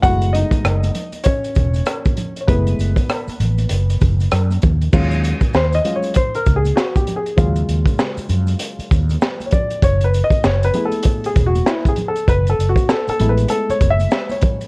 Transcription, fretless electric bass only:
X:1
M:4/4
L:1/16
Q:"Swing 16ths" 1/4=98
K:Gblyd
V:1 name="Fretless electric bass" clef=bass
G,,,3 z G,,,2 z4 _F,,,2 z4 | G,,,2 G,,, z3 =A,,,2 G,,,2 G,,,2 G,,2 E,,2 | E,,3 z E,,2 z4 D,,2 z4 | E,,2 E,, z3 G,,2 z2 E,,2 z4 |
G,,,3 z G,,,2 z4 _F,,,2 z4 | G,,,2 G,,, z3 =A,,,2 z2 G,,,2 z4 |]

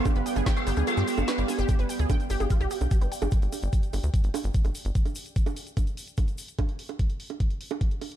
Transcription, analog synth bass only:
X:1
M:4/4
L:1/16
Q:1/4=147
K:none
V:1 name="Analog synth bass" clef=bass
z G,,, z G,,, z2 G,,, D,, z G,, z G,,, z G,,, z G,,, | z G,,, z D,, z2 G,,, G,,, z B,,, z B,,, z G,,, z G,,, | z G,,, z G,,, z2 G,,, D,, z G,,, z G,,, z G,,, z G,,, | z16 |
z16 |]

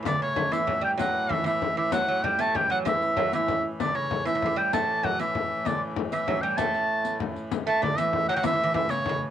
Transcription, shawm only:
X:1
M:6/8
L:1/16
Q:3/8=129
K:Amix
V:1 name="Shawm"
d2 c4 e4 g2 | f4 e2 e4 e2 | f4 g2 a2 g2 f2 | e6 e4- e/2 z3/2 |
d2 c4 e4 g2 | a4 f2 e6 | d2 z4 e4 g2 | a8 z4 |
z2 a2 d2 e4 f/2 g/2 f | e4 e2 c4- c/2 z3/2 |]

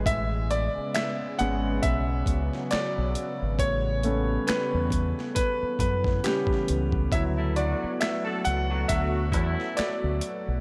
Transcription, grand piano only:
X:1
M:4/4
L:1/16
Q:"Swing 16ths" 1/4=68
K:Amix
V:1 name="Grand piano"
e2 d2 e2 f2 e4 d4 | c4 B4 B2 B2 G3 z | e2 d2 e2 f2 e4 d4 |]
V:2 name="Grand piano"
z6 [^G,B,C]6 z4 | z2 [A,B,C]8- [A,B,C]2 [G,B,C]2 z2 | [F,Ec]16 |]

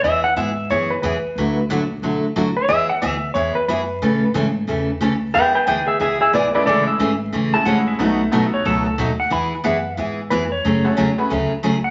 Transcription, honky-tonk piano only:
X:1
M:4/4
L:1/8
Q:"Swing" 1/4=181
K:Emix
V:1 name="Honky-tonk piano"
z8 | z8 | z8 | z8 |
z6 z [G,A,CEG]- | [G,A,CEG]2 z3 [G,A,CEG]3 | [A,B,^DFA] z [A,B,DFA]3 z3 | z8 |
z [A,CFGA] z [A,CFGB] z4 |]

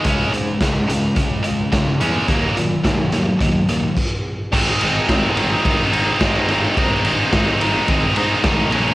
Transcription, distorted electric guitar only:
X:1
M:4/4
L:1/8
Q:1/4=107
K:Abmix
V:1 name="Distorted electric guitar" clef=bass
[D,A,D] [D,A,] [D,A,] [D,A,] [D,A,] [D,A,] [D,A,] [D,A,D] | [E,G,B,] [E,G,] [E,G,] [E,G,] [E,G,] [E,G,] z2 | [A,,E,A,CE] [A,,E,A,CE] [A,,E,A,CE] [A,,E,A,CE] [A,,E,A,CE] [A,,E,A,CE] [A,,E,A,CE] [A,,E,A,CE] | [A,,E,A,CE] [A,,E,A,CE] [A,,E,A,CE] [A,,E,A,CE] [A,,E,A,CE] [A,,E,A,CE] [A,,E,A,CE] [B,,G,B,D] |]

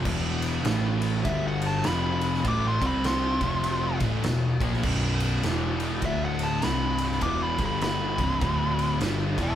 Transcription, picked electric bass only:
X:1
M:4/4
L:1/8
Q:"Swing" 1/4=100
K:Em
V:1 name="Picked electric bass" clef=bass
E,,,2 A,,,2 G,,,2 =F,,,2 | A,,, C,,2 =F,,,2 A,,, E,,, ^A,,, | B,,,,2 E,,,2 D,,,2 C,,,2 | E,,, G,,,2 C,,, D,,,2 G,,, E,,, |]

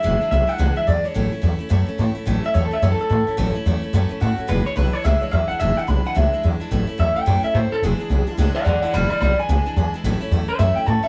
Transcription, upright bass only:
X:1
M:4/4
L:1/8
Q:"Swing" 1/4=216
K:A
V:1 name="Upright bass" clef=bass
E,,, z B,,, z C,, z E,, z | A,,, z E,, z F,, z A,, z | A,,, z E,, z F,, z A,, z | A,,, z E,, z F,, z A,, z |
E,,, z B,,, z C,, z E,, z | E,,, z B,,, z C,, z E,, z | A,,, z E,, z F,, z A,, z | E,,, z B,,, z C,, z E,, z |
E,,, z B,,, z C,, z E,, z | A,,, z E,, z F,, z A,, z |]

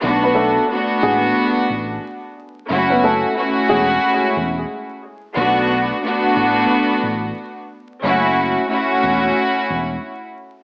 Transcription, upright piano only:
X:1
M:4/4
L:1/16
Q:"Swing 16ths" 1/4=90
K:Bdor
V:1 name="Upright piano"
z [B,B] [A,A]2 z2 [G,G] z8 z | z [B,B] [A,A]2 z2 [G,G] z8 z | z16 | z16 |]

